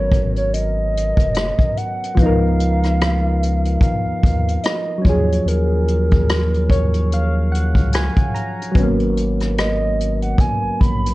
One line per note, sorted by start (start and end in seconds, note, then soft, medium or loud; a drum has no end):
0.00 1.13 G#1 loud
0.00 2.11 F#3 medium
0.00 2.13 B3 medium
0.00 2.15 C#4 medium
0.00 2.17 A#4 medium
0.00 0.31 C#5 loud
0.12 kick medium
0.12 closed hi-hat medium
0.36 0.53 C#5 medium
0.36 closed hi-hat soft
0.54 1.79 D#5 loud
0.54 closed hi-hat medium
0.97 closed hi-hat medium
1.17 1.52 F1 medium
1.17 kick medium
1.17 closed hi-hat soft
1.34 cross-stick loud
1.34 closed hi-hat medium
1.59 kick medium
1.59 closed hi-hat soft
1.77 2.19 F#5 loud
1.77 closed hi-hat medium
2.03 closed hi-hat soft
2.15 3.78 C#2 loud
2.15 5.00 F3 medium
2.15 5.02 B3 medium
2.15 3.82 F5 loud
2.15 kick loud
2.15 closed hi-hat medium
2.22 5.04 D#4 medium
2.22 5.05 A#4 medium
2.60 closed hi-hat medium
2.83 cross-stick soft
2.83 closed hi-hat soft
3.01 cross-stick medium
3.01 closed hi-hat medium
3.43 closed hi-hat medium
3.65 closed hi-hat soft
3.81 4.65 F5 loud
3.81 kick loud
3.81 closed hi-hat medium
4.05 4.12 D#2 soft
4.23 4.58 D#2 medium
4.23 kick medium
4.23 closed hi-hat medium
4.48 closed hi-hat soft
4.64 5.05 D#5 loud
4.64 cross-stick loud
4.64 closed hi-hat medium
4.98 8.26 F#3 medium
4.98 8.28 C#4 medium
5.05 5.40 D#2 loud
5.05 8.30 F3 medium
5.05 5.49 C#5 loud
5.05 kick medium
5.05 closed hi-hat medium
5.09 8.32 G#4 medium
5.32 closed hi-hat soft
5.46 7.77 D#2 loud
5.46 8.35 A#4 medium
5.46 closed hi-hat medium
5.88 closed hi-hat medium
6.11 kick medium
6.11 closed hi-hat soft
6.29 cross-stick loud
6.29 closed hi-hat medium
6.54 closed hi-hat soft
6.70 7.08 C#5 medium
6.70 kick medium
6.70 closed hi-hat medium
6.94 closed hi-hat soft
7.12 7.50 F5 medium
7.12 closed hi-hat medium
7.52 7.90 F#5 medium
7.52 closed hi-hat medium
7.75 8.10 C#2 loud
7.75 kick medium
7.75 closed hi-hat soft
7.93 8.32 G#5 medium
7.93 cross-stick loud
7.93 closed hi-hat medium
8.17 kick medium
8.17 closed hi-hat soft
8.34 8.72 A#5 medium
8.34 closed hi-hat medium
8.61 closed hi-hat soft
8.71 10.35 G#1 loud
8.71 11.14 F#3 medium
8.71 11.14 B3 medium
8.71 kick loud
8.77 11.14 C#4 medium
8.77 closed hi-hat medium
8.83 11.14 A#3 medium
9.00 closed hi-hat soft
9.17 closed hi-hat soft
9.40 cross-stick soft
9.40 closed hi-hat soft
9.57 10.18 D#5 loud
9.57 cross-stick loud
9.57 closed hi-hat medium
10.00 closed hi-hat medium
10.22 10.41 F#5 medium
10.22 closed hi-hat soft
10.38 10.80 G#5 medium
10.38 kick loud
10.38 closed hi-hat medium
10.63 10.70 A#1 soft
10.80 11.14 A#1 medium
10.80 11.14 B5 loud
10.80 kick medium
10.80 closed hi-hat medium
11.06 closed hi-hat soft